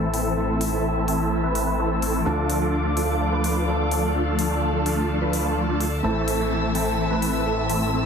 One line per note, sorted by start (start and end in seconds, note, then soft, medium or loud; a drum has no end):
0.00 2.24 A1 medium
0.00 2.23 A2 medium
0.00 0.11 E3 medium
0.00 0.11 A3 medium
0.00 2.23 A3 medium
0.00 0.11 C4 medium
0.00 2.23 C4 medium
0.00 0.11 E4 medium
0.00 2.24 E4 medium
0.00 0.11 A4 medium
0.00 2.24 A4 medium
0.00 8.06 A4 medium
0.00 2.22 E5 medium
0.00 2.22 A5 medium
0.00 2.22 E6 medium
0.00 impact medium
0.14 0.34 E3 medium
0.14 0.34 A3 medium
0.14 0.34 C4 medium
0.14 0.34 E4 medium
0.14 0.34 A4 medium
0.14 open hi-hat medium
0.37 0.70 E3 medium
0.37 0.70 A3 medium
0.37 0.70 C4 medium
0.37 0.70 E4 medium
0.37 0.70 A4 loud
0.61 open hi-hat loud
0.73 1.05 E3 medium
0.73 1.05 A3 medium
0.73 1.05 C4 medium
0.73 1.05 E4 medium
0.73 1.05 A4 medium
1.08 1.41 E3 medium
1.08 1.41 A3 medium
1.08 1.41 C4 medium
1.08 1.41 E4 medium
1.08 1.41 A4 loud
1.08 open hi-hat medium
1.43 1.76 E3 medium
1.43 1.76 A3 medium
1.43 1.76 C4 medium
1.43 1.76 E4 medium
1.43 1.76 B4 medium
1.55 open hi-hat loud
1.79 2.00 E3 medium
1.79 2.00 A3 medium
1.79 2.00 C4 medium
1.79 2.00 E4 medium
1.79 2.00 A4 medium
2.02 2.23 E3 medium
2.02 2.23 A3 medium
2.02 2.23 C4 medium
2.02 2.23 E4 medium
2.02 2.23 A4 loud
2.02 open hi-hat medium
2.25 6.02 D2 medium
2.25 6.01 D3 medium
2.25 2.59 F3 medium
2.25 6.01 A3 medium
2.25 2.59 A3 medium
2.25 2.59 D4 medium
2.25 6.01 D4 medium
2.25 2.59 F4 medium
2.25 6.02 F4 medium
2.25 2.59 A4 loud
2.25 6.02 A4 medium
2.25 6.00 D5 medium
2.25 6.00 F5 medium
2.25 4.13 D6 medium
2.50 open hi-hat loud
2.62 2.94 F3 medium
2.62 2.94 A3 medium
2.62 2.94 D4 medium
2.62 2.94 F4 medium
2.62 2.94 A4 medium
2.97 3.30 F3 loud
2.97 3.30 A3 medium
2.97 3.30 D4 medium
2.97 3.30 F4 medium
2.97 3.30 A4 loud
2.97 open hi-hat medium
3.32 3.65 F3 medium
3.32 3.65 A3 medium
3.32 3.65 D4 medium
3.32 3.65 F4 medium
3.32 3.65 B4 medium
3.44 open hi-hat loud
3.68 3.89 F3 medium
3.68 3.89 A3 medium
3.68 3.89 D4 medium
3.68 3.89 F4 medium
3.68 3.89 A4 medium
3.91 4.12 F3 medium
3.91 4.12 A3 medium
3.91 4.12 D4 medium
3.91 4.12 F4 medium
3.91 4.12 A4 loud
3.91 open hi-hat medium
4.15 4.48 F3 medium
4.15 4.48 A3 medium
4.15 4.48 D4 medium
4.15 4.48 F4 medium
4.15 4.48 A4 loud
4.15 8.06 A5 medium
4.39 open hi-hat loud
4.51 4.83 F3 medium
4.51 4.83 A3 medium
4.51 4.83 D4 medium
4.51 4.83 F4 medium
4.51 4.83 A4 medium
4.86 5.19 F3 medium
4.86 5.19 A3 medium
4.86 5.19 D4 medium
4.86 5.19 F4 medium
4.86 5.19 A4 loud
4.86 open hi-hat medium
5.21 5.43 F3 medium
5.21 5.43 A3 medium
5.21 5.43 D4 medium
5.21 5.43 F4 medium
5.21 5.43 B4 medium
5.33 open hi-hat loud
5.45 5.66 F3 medium
5.45 5.66 A3 medium
5.45 5.66 D4 medium
5.45 5.66 F4 medium
5.45 5.66 A4 medium
5.69 5.84 F3 medium
5.69 5.84 A3 medium
5.69 5.84 D4 medium
5.69 5.84 F4 medium
5.69 5.84 A4 medium
5.81 open hi-hat medium
6.03 8.06 A1 medium
6.03 8.06 A2 medium
6.03 6.37 E3 medium
6.03 8.06 A3 medium
6.03 6.37 A3 medium
6.03 6.37 C4 medium
6.03 8.06 C4 medium
6.03 6.37 E4 medium
6.03 8.06 E4 medium
6.03 6.37 A4 loud
6.03 8.06 A4 medium
6.03 8.06 E5 medium
6.03 8.06 E6 medium
6.28 open hi-hat loud
6.40 6.72 E3 medium
6.40 6.72 A3 medium
6.40 6.72 C4 medium
6.40 6.72 E4 medium
6.40 6.72 A4 medium
6.75 7.08 E3 medium
6.75 7.08 A3 medium
6.75 7.08 C4 medium
6.75 7.08 E4 medium
6.75 7.08 A4 loud
6.75 open hi-hat medium
7.10 7.43 E3 medium
7.10 7.43 A3 medium
7.10 7.43 C4 medium
7.10 7.43 E4 medium
7.10 7.43 B4 medium
7.22 open hi-hat medium
7.46 7.67 E3 medium
7.46 7.67 A3 medium
7.46 7.67 C4 medium
7.46 7.67 E4 medium
7.46 7.67 A4 medium
7.69 7.90 E3 medium
7.69 7.90 A3 medium
7.69 7.90 C4 medium
7.69 7.90 E4 medium
7.69 7.90 A4 loud
7.69 open hi-hat medium
7.93 8.06 E3 medium
7.93 8.06 A3 medium
7.93 8.06 C4 medium
7.93 8.06 E4 medium
7.93 8.06 A4 loud